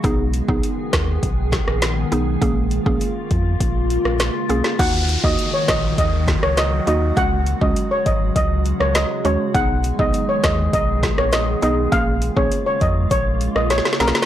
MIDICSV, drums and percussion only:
0, 0, Header, 1, 2, 480
1, 0, Start_track
1, 0, Key_signature, -6, "minor"
1, 0, Tempo, 594059
1, 33, Time_signature, 4, 2, 24, 8
1, 11519, End_track
2, 0, Start_track
2, 0, Title_t, "Drums"
2, 33, Note_on_c, 9, 36, 123
2, 33, Note_on_c, 9, 42, 69
2, 114, Note_off_c, 9, 36, 0
2, 114, Note_off_c, 9, 42, 0
2, 271, Note_on_c, 9, 42, 59
2, 352, Note_off_c, 9, 42, 0
2, 392, Note_on_c, 9, 36, 107
2, 473, Note_off_c, 9, 36, 0
2, 512, Note_on_c, 9, 42, 72
2, 593, Note_off_c, 9, 42, 0
2, 752, Note_on_c, 9, 38, 122
2, 752, Note_on_c, 9, 42, 55
2, 754, Note_on_c, 9, 36, 87
2, 758, Note_on_c, 9, 37, 97
2, 833, Note_off_c, 9, 38, 0
2, 833, Note_off_c, 9, 42, 0
2, 835, Note_off_c, 9, 36, 0
2, 839, Note_off_c, 9, 37, 0
2, 992, Note_on_c, 9, 36, 91
2, 993, Note_on_c, 9, 42, 78
2, 1073, Note_off_c, 9, 36, 0
2, 1074, Note_off_c, 9, 42, 0
2, 1231, Note_on_c, 9, 36, 87
2, 1233, Note_on_c, 9, 42, 58
2, 1235, Note_on_c, 9, 38, 69
2, 1312, Note_off_c, 9, 36, 0
2, 1314, Note_off_c, 9, 42, 0
2, 1315, Note_off_c, 9, 38, 0
2, 1355, Note_on_c, 9, 37, 91
2, 1436, Note_off_c, 9, 37, 0
2, 1470, Note_on_c, 9, 42, 80
2, 1472, Note_on_c, 9, 38, 106
2, 1478, Note_on_c, 9, 37, 85
2, 1551, Note_off_c, 9, 42, 0
2, 1553, Note_off_c, 9, 38, 0
2, 1559, Note_off_c, 9, 37, 0
2, 1712, Note_on_c, 9, 42, 55
2, 1793, Note_off_c, 9, 42, 0
2, 1953, Note_on_c, 9, 36, 121
2, 1953, Note_on_c, 9, 42, 65
2, 2034, Note_off_c, 9, 36, 0
2, 2034, Note_off_c, 9, 42, 0
2, 2191, Note_on_c, 9, 42, 62
2, 2272, Note_off_c, 9, 42, 0
2, 2312, Note_on_c, 9, 36, 108
2, 2393, Note_off_c, 9, 36, 0
2, 2432, Note_on_c, 9, 42, 70
2, 2513, Note_off_c, 9, 42, 0
2, 2672, Note_on_c, 9, 42, 53
2, 2674, Note_on_c, 9, 36, 90
2, 2753, Note_off_c, 9, 42, 0
2, 2755, Note_off_c, 9, 36, 0
2, 2912, Note_on_c, 9, 36, 89
2, 2913, Note_on_c, 9, 42, 83
2, 2993, Note_off_c, 9, 36, 0
2, 2994, Note_off_c, 9, 42, 0
2, 3154, Note_on_c, 9, 42, 59
2, 3235, Note_off_c, 9, 42, 0
2, 3275, Note_on_c, 9, 37, 91
2, 3356, Note_off_c, 9, 37, 0
2, 3391, Note_on_c, 9, 42, 81
2, 3393, Note_on_c, 9, 38, 106
2, 3399, Note_on_c, 9, 37, 86
2, 3472, Note_off_c, 9, 42, 0
2, 3474, Note_off_c, 9, 38, 0
2, 3480, Note_off_c, 9, 37, 0
2, 3633, Note_on_c, 9, 42, 57
2, 3714, Note_off_c, 9, 42, 0
2, 3751, Note_on_c, 9, 38, 71
2, 3832, Note_off_c, 9, 38, 0
2, 3873, Note_on_c, 9, 36, 124
2, 3873, Note_on_c, 9, 49, 105
2, 3874, Note_on_c, 9, 42, 68
2, 3954, Note_off_c, 9, 36, 0
2, 3954, Note_off_c, 9, 42, 0
2, 3954, Note_off_c, 9, 49, 0
2, 4112, Note_on_c, 9, 42, 64
2, 4192, Note_off_c, 9, 42, 0
2, 4233, Note_on_c, 9, 36, 110
2, 4313, Note_off_c, 9, 36, 0
2, 4353, Note_on_c, 9, 42, 72
2, 4433, Note_off_c, 9, 42, 0
2, 4592, Note_on_c, 9, 38, 120
2, 4592, Note_on_c, 9, 42, 55
2, 4594, Note_on_c, 9, 36, 89
2, 4599, Note_on_c, 9, 37, 99
2, 4673, Note_off_c, 9, 38, 0
2, 4673, Note_off_c, 9, 42, 0
2, 4675, Note_off_c, 9, 36, 0
2, 4679, Note_off_c, 9, 37, 0
2, 4833, Note_on_c, 9, 36, 92
2, 4834, Note_on_c, 9, 42, 83
2, 4913, Note_off_c, 9, 36, 0
2, 4914, Note_off_c, 9, 42, 0
2, 5071, Note_on_c, 9, 36, 86
2, 5074, Note_on_c, 9, 42, 58
2, 5075, Note_on_c, 9, 38, 71
2, 5152, Note_off_c, 9, 36, 0
2, 5154, Note_off_c, 9, 42, 0
2, 5156, Note_off_c, 9, 38, 0
2, 5195, Note_on_c, 9, 37, 98
2, 5276, Note_off_c, 9, 37, 0
2, 5311, Note_on_c, 9, 42, 84
2, 5313, Note_on_c, 9, 38, 104
2, 5319, Note_on_c, 9, 37, 88
2, 5392, Note_off_c, 9, 42, 0
2, 5393, Note_off_c, 9, 38, 0
2, 5400, Note_off_c, 9, 37, 0
2, 5553, Note_on_c, 9, 42, 57
2, 5634, Note_off_c, 9, 42, 0
2, 5793, Note_on_c, 9, 36, 126
2, 5793, Note_on_c, 9, 42, 68
2, 5874, Note_off_c, 9, 36, 0
2, 5874, Note_off_c, 9, 42, 0
2, 6031, Note_on_c, 9, 42, 59
2, 6112, Note_off_c, 9, 42, 0
2, 6153, Note_on_c, 9, 36, 107
2, 6233, Note_off_c, 9, 36, 0
2, 6273, Note_on_c, 9, 42, 73
2, 6354, Note_off_c, 9, 42, 0
2, 6512, Note_on_c, 9, 42, 53
2, 6514, Note_on_c, 9, 36, 91
2, 6593, Note_off_c, 9, 42, 0
2, 6595, Note_off_c, 9, 36, 0
2, 6753, Note_on_c, 9, 36, 89
2, 6754, Note_on_c, 9, 42, 81
2, 6834, Note_off_c, 9, 36, 0
2, 6834, Note_off_c, 9, 42, 0
2, 6994, Note_on_c, 9, 42, 58
2, 7075, Note_off_c, 9, 42, 0
2, 7115, Note_on_c, 9, 37, 94
2, 7196, Note_off_c, 9, 37, 0
2, 7231, Note_on_c, 9, 42, 81
2, 7233, Note_on_c, 9, 38, 113
2, 7239, Note_on_c, 9, 37, 85
2, 7312, Note_off_c, 9, 42, 0
2, 7313, Note_off_c, 9, 38, 0
2, 7320, Note_off_c, 9, 37, 0
2, 7473, Note_on_c, 9, 42, 56
2, 7553, Note_off_c, 9, 42, 0
2, 7713, Note_on_c, 9, 36, 127
2, 7713, Note_on_c, 9, 42, 69
2, 7794, Note_off_c, 9, 36, 0
2, 7794, Note_off_c, 9, 42, 0
2, 7951, Note_on_c, 9, 42, 64
2, 8032, Note_off_c, 9, 42, 0
2, 8073, Note_on_c, 9, 36, 109
2, 8153, Note_off_c, 9, 36, 0
2, 8193, Note_on_c, 9, 42, 70
2, 8274, Note_off_c, 9, 42, 0
2, 8433, Note_on_c, 9, 38, 118
2, 8433, Note_on_c, 9, 42, 55
2, 8434, Note_on_c, 9, 36, 87
2, 8439, Note_on_c, 9, 37, 102
2, 8513, Note_off_c, 9, 38, 0
2, 8513, Note_off_c, 9, 42, 0
2, 8515, Note_off_c, 9, 36, 0
2, 8520, Note_off_c, 9, 37, 0
2, 8673, Note_on_c, 9, 36, 93
2, 8673, Note_on_c, 9, 42, 80
2, 8753, Note_off_c, 9, 36, 0
2, 8754, Note_off_c, 9, 42, 0
2, 8911, Note_on_c, 9, 36, 90
2, 8914, Note_on_c, 9, 42, 60
2, 8915, Note_on_c, 9, 38, 69
2, 8992, Note_off_c, 9, 36, 0
2, 8995, Note_off_c, 9, 42, 0
2, 8996, Note_off_c, 9, 38, 0
2, 9035, Note_on_c, 9, 37, 96
2, 9116, Note_off_c, 9, 37, 0
2, 9151, Note_on_c, 9, 42, 77
2, 9153, Note_on_c, 9, 38, 106
2, 9159, Note_on_c, 9, 37, 85
2, 9232, Note_off_c, 9, 42, 0
2, 9234, Note_off_c, 9, 38, 0
2, 9240, Note_off_c, 9, 37, 0
2, 9393, Note_on_c, 9, 42, 55
2, 9473, Note_off_c, 9, 42, 0
2, 9633, Note_on_c, 9, 36, 127
2, 9633, Note_on_c, 9, 42, 73
2, 9714, Note_off_c, 9, 36, 0
2, 9714, Note_off_c, 9, 42, 0
2, 9872, Note_on_c, 9, 42, 64
2, 9952, Note_off_c, 9, 42, 0
2, 9993, Note_on_c, 9, 36, 104
2, 10073, Note_off_c, 9, 36, 0
2, 10113, Note_on_c, 9, 42, 75
2, 10193, Note_off_c, 9, 42, 0
2, 10352, Note_on_c, 9, 42, 57
2, 10354, Note_on_c, 9, 36, 91
2, 10433, Note_off_c, 9, 42, 0
2, 10435, Note_off_c, 9, 36, 0
2, 10593, Note_on_c, 9, 36, 92
2, 10593, Note_on_c, 9, 42, 83
2, 10674, Note_off_c, 9, 36, 0
2, 10674, Note_off_c, 9, 42, 0
2, 10834, Note_on_c, 9, 42, 58
2, 10915, Note_off_c, 9, 42, 0
2, 10955, Note_on_c, 9, 37, 93
2, 11036, Note_off_c, 9, 37, 0
2, 11071, Note_on_c, 9, 42, 78
2, 11073, Note_on_c, 9, 38, 61
2, 11134, Note_off_c, 9, 38, 0
2, 11134, Note_on_c, 9, 38, 57
2, 11152, Note_off_c, 9, 42, 0
2, 11194, Note_off_c, 9, 38, 0
2, 11194, Note_on_c, 9, 38, 78
2, 11254, Note_off_c, 9, 38, 0
2, 11254, Note_on_c, 9, 38, 73
2, 11313, Note_on_c, 9, 42, 57
2, 11314, Note_off_c, 9, 38, 0
2, 11314, Note_on_c, 9, 38, 94
2, 11373, Note_off_c, 9, 38, 0
2, 11373, Note_on_c, 9, 38, 89
2, 11394, Note_off_c, 9, 42, 0
2, 11433, Note_off_c, 9, 38, 0
2, 11433, Note_on_c, 9, 38, 110
2, 11493, Note_off_c, 9, 38, 0
2, 11493, Note_on_c, 9, 38, 99
2, 11519, Note_off_c, 9, 38, 0
2, 11519, End_track
0, 0, End_of_file